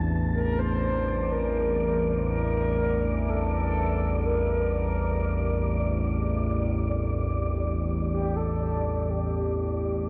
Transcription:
0.00 10.09 A1 medium
0.00 10.09 E2 medium
0.00 10.09 A2 medium
0.00 10.09 C4 medium
0.00 10.09 D4 medium
0.00 2.23 E4 medium
0.00 0.36 A5 medium
0.00 1.87 A5 medium
0.33 0.60 A#4 loud
0.33 10.09 D5 medium
0.59 1.34 C5 loud
0.77 10.09 G3 medium
1.32 2.30 A#4 medium
2.30 3.31 A#4 loud
3.29 3.52 A4 medium
3.52 4.26 A4 medium
3.83 10.09 G4 medium
4.25 6.18 A#4 medium
8.12 8.38 G4 medium
8.36 9.11 A4 medium
9.10 10.09 G4 loud

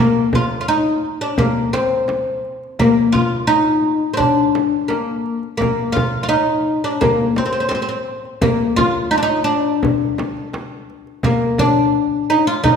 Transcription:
0.00 0.35 A#3 medium
0.17 darbuka ka soft
0.33 0.59 F4 medium
0.33 frame drum medium
0.33 darbuka dum medium
0.51 darbuka ka soft
0.61 0.68 F4 medium
0.68 1.21 D#4 medium
0.68 darbuka ka soft
1.05 darbuka ka soft
1.21 1.40 D4 medium
1.38 1.73 A#3 medium
1.38 frame drum medium
1.38 darbuka dum medium
1.57 darbuka ka soft
1.73 2.40 C4 medium
1.73 darbuka tek medium
1.73 frame drum medium
1.92 darbuka ka soft
2.08 darbuka tek medium
2.08 frame drum medium
2.45 darbuka ka soft
2.63 darbuka ka soft
2.79 3.16 A#3 medium
2.79 frame drum medium
2.79 darbuka dum medium
2.98 darbuka ka soft
3.12 3.47 F4 medium
3.12 frame drum medium
3.12 darbuka dum medium
3.47 4.13 D#4 medium
3.47 darbuka ka soft
3.85 darbuka ka soft
4.14 4.17 C4 medium
4.14 4.92 D4 medium
4.20 frame drum medium
4.20 darbuka dum medium
4.37 darbuka ka soft
4.55 darbuka tek medium
4.55 frame drum medium
4.73 darbuka ka soft
4.88 5.39 A#3 medium
4.88 darbuka tek medium
4.88 frame drum medium
5.26 darbuka ka soft
5.43 darbuka ka soft
5.57 5.96 A#3 medium
5.57 frame drum medium
5.62 darbuka dum medium
5.79 darbuka ka soft
5.92 6.21 F4 medium
5.92 frame drum medium
5.97 darbuka dum medium
6.14 darbuka ka soft
6.23 6.28 F4 medium
6.29 6.84 D#4 medium
6.29 darbuka ka soft
6.67 darbuka ka soft
6.84 7.03 D4 medium
7.01 7.34 A#3 medium
7.01 darbuka dum medium
7.01 frame drum medium
7.20 darbuka ka soft
7.36 7.44 C4 medium
7.36 darbuka tek medium
7.36 frame drum medium
7.46 7.51 C4 medium
7.53 7.59 C4 medium
7.53 darbuka ka soft
7.60 7.67 C4 medium
7.69 7.74 C4 medium
7.69 darbuka tek medium
7.69 frame drum medium
7.75 7.81 C4 medium
7.82 7.87 C4 medium
7.89 7.97 C4 medium
8.07 darbuka ka soft
8.25 darbuka ka soft
8.41 8.79 A#3 medium
8.41 frame drum medium
8.41 darbuka dum medium
8.61 darbuka ka soft
8.76 9.10 F4 loud
8.76 frame drum medium
8.76 darbuka dum medium
8.96 darbuka ka soft
9.11 9.17 D#4 medium
9.11 darbuka ka soft
9.18 9.22 D4 medium
9.23 9.44 D#4 medium
9.44 10.48 D4 medium
9.50 darbuka ka soft
9.83 frame drum medium
9.83 darbuka dum medium
10.02 darbuka ka soft
10.18 darbuka tek medium
10.18 frame drum medium
10.37 darbuka ka soft
10.53 darbuka tek medium
10.53 frame drum medium
10.90 darbuka ka soft
11.07 darbuka ka soft
11.23 11.61 A#3 medium
11.23 frame drum medium
11.23 darbuka dum medium
11.43 darbuka ka soft
11.58 12.29 D4 medium
11.58 frame drum medium
11.58 darbuka dum medium
11.78 darbuka ka soft
11.95 darbuka ka soft
12.30 12.47 D#4 medium
12.47 12.63 F4 medium
12.64 12.76 D#4 medium
12.64 frame drum medium
12.64 darbuka dum medium

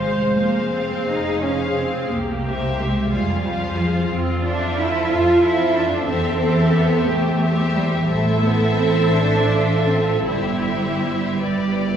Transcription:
0.00 0.96 F1 medium
0.00 0.37 G#3 medium
0.00 0.37 G#4 soft
0.00 1.08 C5 medium
0.00 0.37 C5 soft
0.00 0.36 F5 soft
0.37 0.73 A#3 medium
0.37 1.41 G#4 soft
0.37 1.41 C5 soft
0.37 1.41 F5 soft
0.73 1.07 C4 medium
1.08 1.99 F1 medium
1.08 1.43 D#4 medium
1.08 2.09 G#4 soft
1.42 1.77 C#4 medium
1.42 2.10 G#4 soft
1.42 2.10 C5 soft
1.42 2.10 F5 soft
1.76 2.11 C4 medium
2.11 2.99 C2 medium
2.11 2.77 A#3 medium
2.11 3.11 G4 medium
2.44 3.09 G4 soft
2.44 3.09 C5 soft
2.44 3.10 E5 soft
2.77 3.11 G#3 medium
3.10 3.98 F2 medium
3.10 3.77 G3 medium
3.10 6.08 F4 medium
3.10 3.42 G#4 soft
3.10 3.43 C5 soft
3.10 3.42 F5 soft
3.43 4.09 G#4 soft
3.43 4.09 C5 medium
3.43 4.09 F5 soft
3.76 4.10 F3 medium
4.10 4.99 F2 medium
4.10 4.43 C4 medium
4.44 4.77 D4 medium
4.44 5.41 A4 medium
4.44 5.41 C5 medium
4.44 5.41 E5 soft
4.78 5.11 E4 medium
5.10 5.97 F2 medium
5.10 5.43 F4 medium
5.42 5.75 E4 medium
5.42 6.08 A4 medium
5.42 6.07 C5 soft
5.42 6.05 E5 soft
5.75 6.08 D4 medium
6.06 6.96 E2 medium
6.06 6.73 C4 medium
6.06 6.41 G4 soft
6.06 7.06 A4 medium
6.06 6.41 C5 medium
6.06 6.39 E5 medium
6.40 7.40 G4 medium
6.40 7.40 C5 medium
6.40 7.39 E5 soft
6.74 7.08 B3 medium
7.07 7.97 E2 medium
7.07 7.75 A3 medium
7.07 8.08 G4 medium
7.41 8.08 G4 medium
7.41 8.07 C5 medium
7.41 8.06 E5 medium
7.75 8.09 G3 medium
8.07 10.22 A1 medium
8.07 8.42 A3 medium
8.07 9.47 E4 medium
8.07 10.22 A4 medium
8.07 10.22 C5 medium
8.07 10.22 E5 medium
8.42 8.77 B3 medium
8.77 9.14 C4 medium
9.14 9.88 D4 medium
9.51 10.25 F4 medium
9.88 10.27 C4 medium
10.26 11.40 G1 medium
10.26 11.97 G3 medium
10.26 11.97 E4 medium
10.26 11.38 G4 medium
10.26 11.38 C5 medium
10.26 11.39 E5 medium
11.40 11.97 G1 medium
11.40 11.97 G4 medium
11.40 11.97 B4 medium
11.40 11.97 D5 soft

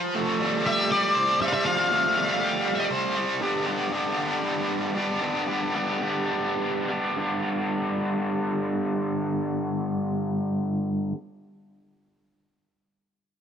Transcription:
0.00 1.15 F3 medium
0.15 1.40 A3 medium
0.40 0.91 G3 medium
0.66 1.91 G4 medium
0.66 0.91 E5 loud
0.91 1.39 G3 medium
0.91 1.41 D5 loud
1.15 2.40 C5 medium
1.40 2.15 G3 medium
1.40 1.44 E5 loud
1.48 1.53 F5 medium
1.53 1.65 E5 medium
1.65 2.90 F3 medium
1.65 2.87 F5 loud
1.91 3.16 A3 medium
2.16 2.65 G3 medium
2.40 3.41 G4 medium
2.66 3.15 G3 medium
2.91 3.41 C5 medium
3.16 3.40 G3 medium
3.40 3.90 G2 medium
3.40 3.90 D3 medium
3.40 3.69 G3 medium
3.40 3.68 B3 medium
3.40 3.67 D4 loud
3.40 3.66 G4 loud
3.66 3.91 G3 medium
3.66 3.92 B3 medium
3.66 3.92 D4 medium
3.66 3.93 G4 medium
3.90 5.20 G2 medium
3.90 4.42 D3 medium
3.90 4.20 G3 medium
3.90 4.19 B3 medium
3.90 4.18 D4 medium
3.90 4.17 G4 medium
4.17 4.94 G3 medium
4.17 4.96 B3 medium
4.17 4.96 D4 medium
4.17 4.98 G4 medium
4.94 5.21 G3 medium
4.94 5.22 B3 medium
4.94 5.22 D4 medium
4.94 5.22 G4 medium
5.20 5.72 G2 medium
5.20 5.73 D3 medium
5.20 5.49 G3 medium
5.20 5.48 B3 medium
5.20 5.47 D4 loud
5.20 5.46 G4 medium
5.47 5.74 G3 medium
5.47 5.75 B3 medium
5.47 5.75 D4 medium
5.47 5.76 G4 medium
5.74 6.30 G2 medium
5.74 6.30 D3 medium
5.74 6.03 G3 medium
5.74 6.02 B3 medium
5.74 6.01 D4 medium
5.74 6.00 G4 medium
6.01 6.87 G3 medium
6.01 6.88 B3 medium
6.01 6.89 D4 medium
6.01 6.90 G4 medium
6.88 7.16 G3 medium
6.88 7.17 B3 medium
6.88 7.17 D4 medium
6.88 7.17 G4 medium
7.16 11.12 G2 medium
7.16 11.13 D3 medium
7.16 11.14 G3 medium
7.16 11.14 B3 medium
7.16 11.15 D4 medium
7.16 11.16 G4 medium

